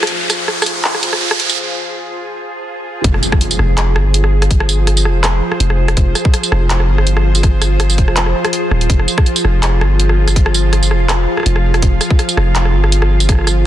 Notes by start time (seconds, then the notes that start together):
Already playing: F1 F3 F4 G#4 C5, riser
0.03 cross-stick, closed hi-hat
0.07 closed hi-hat
0.12 F1
0.30 cross-stick, closed hi-hat, tambourine
0.48 cross-stick
0.62 cross-stick, tambourine
0.66 F1, closed hi-hat
0.85 clap
0.95 cross-stick
1.03 G1, closed hi-hat
1.13 cross-stick
1.31 cross-stick
1.40 closed hi-hat
1.50 tambourine
3.04 F1 F3, kick, closed hi-hat, impact
3.14 cross-stick
3.23 tambourine
3.29 F4, kick, cross-stick
3.41 closed hi-hat
3.51 tambourine
3.59 F1, cross-stick
3.66 C5
3.78 cross-stick, clap, closed hi-hat
3.96 G1, cross-stick
4.14 closed hi-hat
4.24 cross-stick
4.42 cross-stick, closed hi-hat
4.51 kick, closed hi-hat
4.60 cross-stick
4.69 tambourine
4.87 cross-stick, closed hi-hat
4.97 tambourine
5.05 F1, cross-stick
5.24 cross-stick, clap, closed hi-hat
5.52 cross-stick
5.60 F1, closed hi-hat
5.70 cross-stick
5.88 cross-stick, closed hi-hat
5.97 F1, kick, closed hi-hat
6.15 cross-stick, tambourine
6.25 kick
6.34 cross-stick, closed hi-hat
6.43 tambourine
6.52 F1, cross-stick
6.70 clap, closed hi-hat
6.80 cross-stick
6.88 G1
6.98 cross-stick
7.07 closed hi-hat
7.17 cross-stick
7.35 closed hi-hat, tambourine
7.43 kick, cross-stick, closed hi-hat
7.62 cross-stick, tambourine
7.80 cross-stick, closed hi-hat
7.90 tambourine
7.98 F1, kick, closed hi-hat
8.08 cross-stick
8.16 clap, closed hi-hat
8.26 cross-stick
8.45 cross-stick, closed hi-hat
8.53 closed hi-hat
8.71 D#1, cross-stick
8.81 closed hi-hat
8.90 F1, kick, closed hi-hat
8.99 cross-stick
9.08 tambourine
9.18 kick, cross-stick
9.26 closed hi-hat
9.36 tambourine
9.45 F1, cross-stick
9.52 F5
9.63 cross-stick, clap, closed hi-hat
9.81 G1, cross-stick
10.00 closed hi-hat
10.09 cross-stick
10.28 cross-stick, closed hi-hat, tambourine
10.36 kick, closed hi-hat
10.46 cross-stick
10.54 tambourine
10.73 cross-stick, closed hi-hat
10.83 tambourine
10.91 F1, cross-stick
11.09 cross-stick, clap, closed hi-hat
11.37 cross-stick
11.40 cross-stick
11.43 F1, cross-stick, closed hi-hat
11.56 cross-stick
11.74 cross-stick, closed hi-hat
11.82 F1, kick, closed hi-hat
12.01 cross-stick, tambourine
12.11 kick
12.19 cross-stick, closed hi-hat
12.29 tambourine
12.37 F1, cross-stick
12.55 clap, closed hi-hat
12.65 cross-stick
12.74 G1
12.84 cross-stick
12.92 closed hi-hat
13.02 cross-stick
13.20 closed hi-hat, tambourine
13.29 kick, cross-stick, closed hi-hat
13.32 cross-stick
13.35 cross-stick
13.39 cross-stick
13.41 cross-stick
13.44 cross-stick
13.47 cross-stick, tambourine